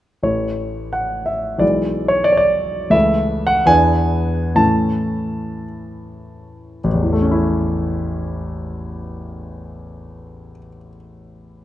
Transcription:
grand piano
0.23 A1 E3 A3 E4 C#5
0.93 F#5
1.26 E5
1.58 B1 E3 G#3 E4 D5
2.08 C#5
2.24 D5
2.32 C#5
2.37 D5
2.90 C#2 E3 A3 E4 E5
3.47 F#5
3.66 E2 E3 B3 D4 G#5
4.55 A2 E3 A3 C#4 A5
6.84 A1
6.94 E2
7.03 E3
7.13 A3
7.22 C#4
7.31 E4

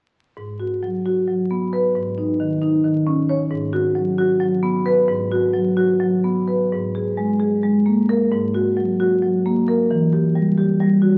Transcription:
marimba
0.37 G#2
0.60 F#4
0.83 F#3
1.06 F#4
1.28 F#3
1.51 B3
1.73 B4
1.95 G#2
2.18 D#4
2.40 D#3
2.62 D#4
2.84 D#3
3.07 C#4
3.29 C#5
3.51 G#2
3.73 F#4
3.95 F#3
4.18 F#4
4.40 F#3
4.63 B3
4.86 B4
5.08 G#2
5.32 F#4
5.54 F#3
5.77 F#4
6.00 F#3
6.24 B3
6.48 B4
6.72 G#2
6.95 G#4
7.17 G#3
7.40 G#4
7.63 G#3
7.86 A#3
8.09 A#4
8.32 G#2
8.54 F#4
8.77 F#3
9.00 F#4
9.22 F#3
9.46 A#3
9.68 A#4
9.91 E3
10.13 G4
10.35 G3
10.58 G4
10.80 G3
11.02 F#4

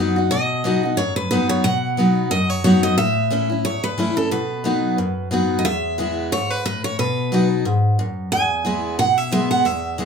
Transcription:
steel-string acoustic guitar
Already playing: F#2 F#3
0.00 B3 D#4 F#4
0.16 D#4 F#4
0.31 B2 D#5
0.64 F#3 B3 D#4 F#4
0.83 D#4 F#4
0.97 F#2 C#5
1.16 B4
1.31 F#3 B3 D#4 F#4 B4
1.49 C#5
1.64 B2 F#5
1.97 F#3 B3 D#4 F#4
2.31 F#2 D#5
2.50 C#5
2.64 F#3 B3 D#4 F#4 C#5
2.83 D#5
2.98 A2 E5
3.30 E3 A3 C#4 E4
3.50 C#4 E4
3.65 E2 C#5
3.84 B4
3.98 E3 A3 C#4 E4
4.16 C#4 E4 A4
4.31 B2 B4
4.64 F#3 B3 D#4 F#4
4.98 F#2
5.31 F#3 B3 D#4 F#4
5.59 D#5
5.65 E2 E5
5.98 E3 G#3 B3 E4
6.32 G#2 C#5
6.50 B4
6.65 A2 B4
6.84 C#5
6.99 B2 B4
7.32 F#3 B3 D#4 F#4
7.65 G#2
7.99 F#2
8.32 E2 G#5
8.65 E3 G#3 B3 E4
8.99 B2 F#5
9.18 E5
9.31 E3 G#3 B3 E4 E5
9.51 F#5
9.65 E2 E5
9.98 E3 G#3 B3 E4

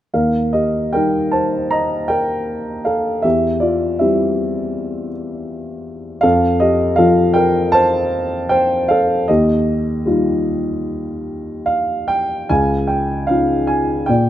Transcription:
grand piano
0.13 D#2 A#4 F5
0.53 G4 D#5
0.93 G3 A#3 D#4 A#4 G5
1.31 C5 A5
1.71 D#5 A#5
2.08 A#4 G5
2.85 A4 F5
3.22 E2 G4 E5
3.60 F4 D5
3.99 G3 C4 E4 G4 E5
6.21 F2 A4 F5
6.60 G4 D#5
6.96 F3 C4 F4 A4 F5
7.34 A#4 G5
7.72 C5 A5
8.49 C5 G5
8.88 A4 F5
9.28 D#2 G4 D#5
10.06 G3 D#4 F4
11.66 F5
12.08 G5
12.49 C#2 F5 G#5
12.87 G5
13.27 C#4 D#4 F5
13.31 F4
13.67 G#5
14.06 A#2 D5 G5

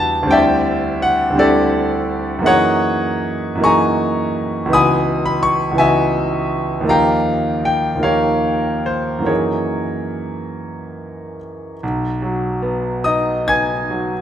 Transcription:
grand piano
Already playing: E2 G3 B3 D4 F#4 G4 B4 E5 F#5 G5 A5 B5
0.23 D2 G3
0.27 C4 D4 E4 G5
0.32 D5 E5
1.02 F#5
1.30 D2 G3
1.35 C4 D4 E4 D5
1.39 G4 A4
2.39 F#2 E3 A#3
2.44 D#4 G#4 C#5 D#5 F#5
3.55 F#2 E3
3.60 A#3 D#4 G#4 C#6
3.65 G#5 A#5
4.65 C#2 E3 B3
4.70 D#4 F#4 D#6
4.74 G#5 B5
5.26 B5
5.43 C#6
5.71 C#2 E3 B3
5.77 D#4 F#4 D#5 E5 G#5
6.81 D#2 F3 A#3
6.87 D#4 G4 F5 G5 A#5
7.65 G5
7.95 D#2 F3
7.99 A#3 D#4 G4 F5
8.04 A#4 C#5
8.86 C5
9.19 F#2 E3 A#3
9.25 D#4 G#4 A#4 C#5
11.83 B1
12.22 F#3
12.62 B3
13.04 D#4 D#5 D#6
13.48 B3 G#5 G#6
13.90 F#3

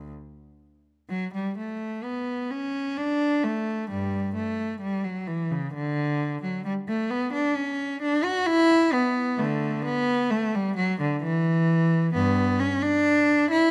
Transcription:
cello
1.09 F#3
1.34 G3
1.58 A3
2.04 B3
2.51 C#4
2.97 D4
3.44 A3
3.90 G2 G3
4.35 A3
4.81 G3
5.04 F#3
5.27 E3
5.51 C#3
5.74 D3
6.43 F#3
6.65 G3
6.88 A3
7.10 B3
7.33 D4
7.56 C#4
8.02 D4
8.24 F#4
8.46 E4
8.93 B3
9.39 D3 A3
9.85 B3
10.31 A3
10.55 G3
10.76 F#3
11.01 D3
11.23 E3
12.14 G2 B3
12.60 C#4
12.83 D4
13.51 E4

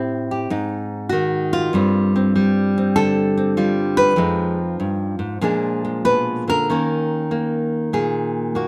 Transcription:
nylon-string guitar
Already playing: A2 C4 E4 G4
0.31 G4
0.50 G#2 D#4
1.09 D#3 F#4
1.53 F4
1.73 G2 G3 C4
2.16 C4
2.36 G3
2.78 C4
2.96 D3 A4
3.38 C4
3.57 G3 F4
3.97 B4
4.16 F2 F3 G#3 D#4
4.80 G2
5.19 G#2
5.41 A#2 F3 G#3 D4 G#4
5.85 G#3
6.05 B2 B4
6.48 D3 A#4
6.70 D#3 A#3 C#4
7.31 A#3
7.93 A#2 G#4
8.55 A#3 F#4

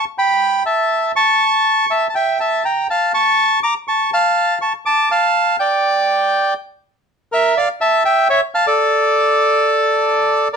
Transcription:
bandoneon
0.18 G5 B5
0.66 E5 A5
1.16 A5 C#6
1.91 E5 A5
2.09 A5
2.15 E5 G5
2.40 E5 A5
2.65 G5 A#5
2.90 F5 A5
3.14 A5 C#6
3.63 A#5 D6
3.88 A5 C#6
4.13 F5 A5
4.62 A5 C#6
4.86 A5 D6
5.11 F5 A5
5.59 D5 G5
7.32 A#4 E5
7.57 D5 F5
7.81 E5 A5
8.05 E5 G5
8.30 C#5 E5
8.55 F5 A5
8.67 A4 D5
10.53 A#4 D5

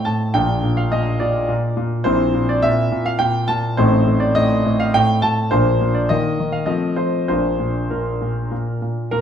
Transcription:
grand piano
Already playing: C4 D#4
0.05 A2 A5
0.34 A#1 A#2 A#3 D4 G5
0.63 A#2
0.77 F5
0.92 A#2 D#5
1.20 A#2 D5
1.49 A#2
1.77 A#2
2.04 A#1 A#2 C4 E4 C5
2.34 A#2
2.49 D5
2.62 A#2 E5
2.91 A#2
3.06 F5
3.19 A#2 G5
3.48 A#2 A5
3.77 A1 A2 C4 D#4 C5
4.06 A2
4.20 D5
4.35 A2 D#5
4.65 A2
4.80 F5
4.94 A2 G5
5.22 A2 A5
5.51 A#1 A#2 A#3 D4 C5
5.81 A#2
5.95 D5
6.09 D#3 A#3 D#4 D#5
6.40 D#3
6.52 F5
6.66 F3 A3 C4 D#5
6.96 F3 C5
7.28 A#1 A#2 A#3 D4 C5
7.60 A#2
7.90 A#2 A#4
8.21 A#2
8.51 A#2
8.82 A#2
9.11 A#2 A#4

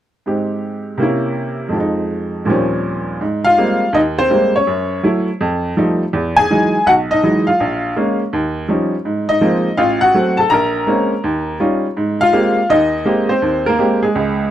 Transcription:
upright piano
0.26 G#2 G#3 C4 G4
0.98 C3 A#3 C#4
1.03 E4
1.69 F2 F3
1.76 G#3 D#4
2.45 D#2 A#2 F3 G3 C4
2.50 C#4
3.21 G#2
3.44 F4 F5
3.58 G3 G#3 A#3 C4
3.93 D#2 D#4 D#5
4.19 C4 C5
4.30 G3 G#3 A#3 C4
4.56 C#4 C#5
4.67 F#2
5.03 F#3 A3 E4
5.41 F2
5.77 F3 G3 A3 D#4
6.13 E2
6.37 G#4 G#5
6.50 E3 F#3 G#3 D#4
6.86 B1 F#4 F#5
7.11 D#4 D#5
7.23 E3 F#3 G#3 D#4
7.47 F4 F5
7.60 A#1
7.96 G#3 A#3 C#4
8.33 D#2
8.68 F3 G3 C#4 D#4
9.05 G#2
9.29 D#4 D#5
9.41 F3 G#3 A#3 C4
9.77 A1 F4 F5
10.01 F#4 F#5
10.14 F#3 A3 C4
10.37 A4 A5
10.50 A#1 A#4 A#5
10.87 G#3 A#3 C4 C#4
11.24 D#2
11.60 G3 C#4 D#4 F4
11.97 G#2
12.21 F4 F5
12.33 G#3 A#3 C4 G4
12.70 D#2 D#4 D#5
13.05 G#3 A#3 C4 G4
13.29 C4 C5
13.42 D#2
13.66 A#3 A#4
13.78 G#3 A#3 C4 G4
14.03 G#3 G#4
14.15 C#2

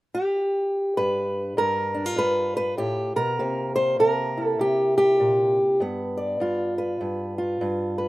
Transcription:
steel-string acoustic guitar
0.15 G4
0.97 G2 B4
1.57 G2 A#4
1.94 D4
2.06 F4
2.16 G2 B4
2.57 B4
2.78 A2 G4
3.16 B2 A#4
3.39 C3 A#3
3.76 C5
3.99 C3 A#4
4.37 E4
4.43 A4
4.59 C3 G4
4.98 G4
5.20 A#2
5.80 G2 B3
6.17 D5
6.40 G2 F4
6.78 B4
7.01 G2
7.38 F4
7.61 G2
7.98 B4

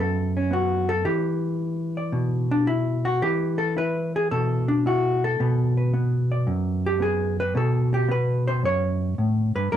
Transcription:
hollow-body jazz guitar
Already playing: F#2 B3
0.00 A4
0.37 C#4
0.51 B3 F#4
0.89 A4
1.05 E3 G4
1.97 D5
2.12 B2
2.51 D4
2.67 E4
3.05 F#4
3.22 E3 G4
3.58 A4
3.77 E4 B4
4.16 G#4
4.31 B2 A4
4.68 D4
4.86 E4 F#4
5.24 A4
5.40 B2 B3
5.77 B4
5.94 B3
6.32 D5
6.47 F#2
6.86 G4
7.00 B3 G#4
7.40 B4
7.55 B2 A4
7.94 G4
8.09 B3 B4
8.48 C5
8.63 F#2 C#5
9.18 A2
9.55 G2 B4
9.72 F#2 A#3 A#4

